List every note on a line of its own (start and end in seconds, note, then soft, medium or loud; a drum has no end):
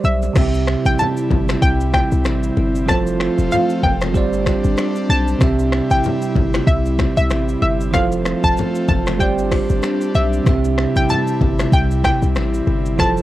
0.00 0.32 G3 medium
0.00 0.33 G4 medium
0.00 0.34 C5 medium
0.00 0.34 D5 medium
0.04 0.30 B1 loud
0.04 0.88 E5 medium
0.04 shaker soft
0.23 high bongo soft
0.23 shaker medium
0.33 0.76 C2 loud
0.33 2.83 C3 medium
0.33 2.86 G3 medium
0.33 2.84 C4 medium
0.33 7.90 C4 medium
0.33 2.86 E4 medium
0.33 2.85 G4 medium
0.33 finger snap medium
0.33 kick loud
0.33 cross-stick medium
0.33 crash loud
0.33 low conga medium
0.33 shaker medium
0.38 2.86 E5 medium
0.54 shaker medium
0.67 finger snap medium
0.67 cross-stick loud
0.85 0.96 A1 medium
0.85 1.00 G5 loud
0.85 shaker medium
0.99 1.58 A5 loud
0.99 high bongo medium
0.99 low conga medium
0.99 shaker medium
1.17 shaker medium
1.31 1.56 G1 medium
1.31 kick loud
1.31 low conga medium
1.49 finger snap medium
1.49 cross-stick loud
1.49 low bongo medium
1.49 shaker medium
1.62 2.02 C2 loud
1.62 1.91 G5 loud
1.62 kick loud
1.62 shaker medium
1.80 shaker medium
1.94 2.84 G5 loud
1.94 finger snap medium
1.94 kick loud
1.94 cross-stick loud
1.94 low bongo medium
1.94 shaker medium
2.12 2.27 C2 loud
2.12 shaker medium
2.25 2.51 A1 loud
2.25 finger snap medium
2.25 cross-stick medium
2.25 high bongo medium
2.25 shaker medium
2.43 shaker medium
2.57 2.90 G1 loud
2.57 high bongo medium
2.75 shaker medium
2.86 3.29 F1 loud
2.86 4.11 F3 medium
2.86 4.13 A3 medium
2.86 4.12 F4 medium
2.86 4.13 F4 medium
2.86 4.13 A4 medium
2.86 3.53 A5 loud
2.86 finger snap medium
2.86 kick loud
2.86 cross-stick medium
2.86 low conga medium
2.86 shaker medium
2.91 4.13 C5 medium
3.07 shaker medium
3.20 finger snap medium
3.20 cross-stick loud
3.38 3.49 E1 loud
3.38 shaker medium
3.51 3.84 F5 medium
3.51 high bongo medium
3.51 low conga medium
3.51 shaker medium
3.70 shaker medium
3.83 4.16 F1 loud
3.83 4.74 G5 medium
3.83 kick medium
3.83 low conga medium
4.01 finger snap medium
4.01 cross-stick loud
4.01 low bongo medium
4.01 shaker medium
4.12 4.55 G1 loud
4.12 5.37 G3 medium
4.12 7.90 G3 medium
4.12 5.40 D4 medium
4.12 5.38 G4 medium
4.12 5.39 C5 medium
4.12 kick loud
4.12 shaker medium
4.17 5.40 D5 medium
4.33 shaker medium
4.46 finger snap medium
4.46 kick medium
4.46 cross-stick loud
4.46 low bongo medium
4.46 shaker medium
4.64 4.75 G1 loud
4.64 shaker medium
4.77 finger snap medium
4.77 cross-stick loud
4.77 high bongo medium
4.77 shaker medium
4.96 shaker medium
5.10 5.35 B1 loud
5.10 5.87 A5 loud
5.10 high bongo soft
5.28 shaker medium
5.38 5.81 C2 loud
5.38 7.88 C3 medium
5.38 7.89 C4 medium
5.38 7.91 E4 loud
5.38 7.90 G4 medium
5.38 finger snap medium
5.38 kick loud
5.38 cross-stick medium
5.38 low conga medium
5.38 shaker medium
5.43 7.91 E5 medium
5.59 shaker medium
5.72 finger snap medium
5.72 cross-stick loud
5.91 6.02 A1 loud
5.91 6.70 G5 loud
5.91 shaker medium
6.04 high bongo medium
6.04 low conga medium
6.04 shaker medium
6.22 shaker medium
6.36 6.61 G1 medium
6.36 kick loud
6.36 low conga medium
6.54 finger snap medium
6.54 cross-stick loud
6.54 low bongo medium
6.54 shaker medium
6.67 7.07 C2 loud
6.67 7.14 E5 medium
6.67 kick loud
6.67 shaker medium
6.86 shaker medium
6.99 finger snap medium
6.99 kick medium
6.99 cross-stick loud
6.99 low bongo medium
6.99 shaker medium
7.17 7.32 C2 loud
7.17 7.61 E5 medium
7.17 shaker medium
7.30 7.56 A1 loud
7.30 finger snap medium
7.30 cross-stick medium
7.30 high bongo medium
7.30 shaker medium
7.48 shaker medium
7.62 7.95 G1 loud
7.62 7.95 E5 medium
7.62 high bongo soft
7.80 shaker medium
7.91 8.34 F1 loud
7.91 9.16 F3 medium
7.91 9.19 A3 medium
7.91 10.44 C4 medium
7.91 9.17 F4 medium
7.91 9.19 F4 medium
7.91 9.18 A4 medium
7.91 8.45 F5 loud
7.91 finger snap medium
7.91 kick loud
7.91 cross-stick medium
7.91 low conga medium
7.91 shaker medium
7.96 9.19 C5 medium
8.12 shaker medium
8.25 finger snap medium
8.25 cross-stick loud
8.25 shaker medium
8.44 8.54 E1 loud
8.44 8.87 A5 loud
8.44 kick loud
8.44 shaker medium
8.57 high bongo medium
8.57 low conga medium
8.57 shaker medium
8.75 shaker medium
8.88 9.21 F1 loud
8.88 9.21 A5 medium
8.88 kick loud
8.88 low conga medium
8.88 shaker medium
9.06 finger snap medium
9.06 cross-stick loud
9.06 low bongo medium
9.06 shaker medium
9.18 9.60 G1 loud
9.18 10.43 G3 medium
9.18 12.95 G3 medium
9.18 10.45 D4 medium
9.18 10.43 G4 medium
9.18 10.44 C5 medium
9.18 9.79 G5 medium
9.18 kick loud
9.18 shaker medium
9.22 10.45 D5 medium
9.38 shaker medium
9.51 finger snap medium
9.51 kick loud
9.51 cross-stick loud
9.51 open hi-hat medium
9.51 low bongo medium
9.51 shaker medium
9.69 9.81 G1 loud
9.69 shaker medium
9.83 finger snap medium
9.83 cross-stick medium
9.83 high bongo medium
9.83 shaker medium
10.01 shaker medium
10.15 10.40 B1 loud
10.15 10.99 E5 loud
10.15 high bongo soft
10.15 shaker medium
10.33 shaker medium
10.44 10.87 C2 loud
10.44 12.94 C3 medium
10.44 13.22 C3 medium
10.44 12.94 C4 medium
10.44 12.96 E4 medium
10.44 12.95 G4 medium
10.44 finger snap medium
10.44 kick loud
10.44 cross-stick medium
10.44 low conga medium
10.44 shaker medium
10.49 12.96 E5 medium
10.64 shaker medium
10.78 finger snap medium
10.78 cross-stick loud
10.96 11.07 A1 medium
10.96 11.10 G5 loud
10.96 shaker medium
11.09 11.75 A5 loud
11.09 high bongo medium
11.09 low conga medium
11.09 shaker medium
11.28 shaker medium
11.41 11.66 G1 medium
11.41 kick loud
11.41 low conga medium
11.59 finger snap medium
11.59 cross-stick loud
11.59 low bongo medium
11.59 shaker medium
11.72 12.13 C2 loud
11.72 12.04 G5 loud
11.72 kick loud
11.72 shaker medium
11.91 shaker medium
12.04 13.02 G5 loud
12.04 finger snap medium
12.04 kick medium
12.04 cross-stick loud
12.04 low bongo medium
12.04 shaker medium
12.22 12.37 C2 medium
12.22 shaker medium
12.35 12.61 A1 medium
12.35 finger snap medium
12.35 cross-stick medium
12.35 high bongo medium
12.35 shaker medium
12.54 shaker medium
12.67 13.00 G1 loud
12.67 high bongo soft
12.86 shaker medium
12.96 13.22 F1 loud
12.96 13.22 F3 medium
12.96 13.22 A3 medium
12.96 13.22 F4 medium
12.96 13.22 A4 medium
12.96 13.22 A5 loud
12.96 finger snap medium
12.96 kick loud
12.96 cross-stick medium
12.96 low conga medium
12.96 shaker medium
13.01 13.22 C5 medium
13.17 shaker medium